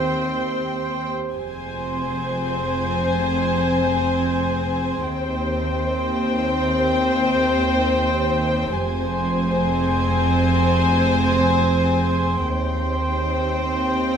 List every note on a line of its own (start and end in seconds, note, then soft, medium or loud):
0.00 1.15 D#2 soft
0.00 1.10 C4 soft
0.00 1.35 G4 soft
0.00 1.10 C5 soft
0.00 1.31 C5 soft
0.00 1.10 G5 soft
0.00 1.31 C6 soft
1.33 5.01 F1 soft
1.33 5.01 F2 soft
1.33 5.02 C4 soft
1.33 5.05 G#4 soft
1.33 5.01 C5 soft
1.33 5.02 C5 soft
1.33 5.01 G#5 soft
1.33 5.01 C6 soft
5.05 8.71 D#2 soft
5.05 8.72 D#2 soft
5.05 8.72 C4 soft
5.05 8.77 G4 soft
5.05 8.72 C5 soft
5.05 8.73 C5 soft
5.05 8.72 G5 soft
5.05 8.73 C6 soft
8.75 12.47 F1 soft
8.75 12.46 F2 medium
8.75 12.42 C4 medium
8.75 12.46 G#4 soft
8.75 12.42 C5 medium
8.75 12.42 C5 soft
8.75 12.42 G#5 soft
8.75 12.42 C6 soft
12.44 14.17 D#2 soft
12.44 14.17 C4 soft
12.44 14.17 G4 soft
12.44 14.17 C5 soft
12.44 14.17 G5 soft
12.44 14.17 C6 soft